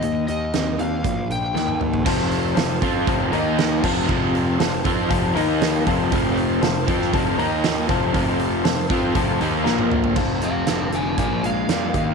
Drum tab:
CC |----------------|x-------------x-|----------------|----------------|
HH |x-x-x-x-x-x-----|--o-o-o-o-o-o---|--o-o-o-o-o-o-o-|o-o-o-o-o-o-o-o-|
SD |----o-------o---|----o-------o---|----o-------o---|----o--o----o---|
T1 |-------------o--|----------------|----------------|----------------|
T2 |--------------o-|----------------|----------------|----------------|
FT |---------------o|----------------|----------------|----------------|
BD |--------o-------|o-----o-o-----o-|o-----o-o-----o-|o-----o-o-----o-|

CC |----------------|x---------------|
HH |o-o-o-o-o-o-----|--x-x-x-x-x-x-x-|
SD |----o-------o---|----o-------o---|
T1 |-------------o--|----------------|
T2 |--------------o-|----------------|
FT |---------------o|----------------|
BD |o-----o-o-------|o-------o-----o-|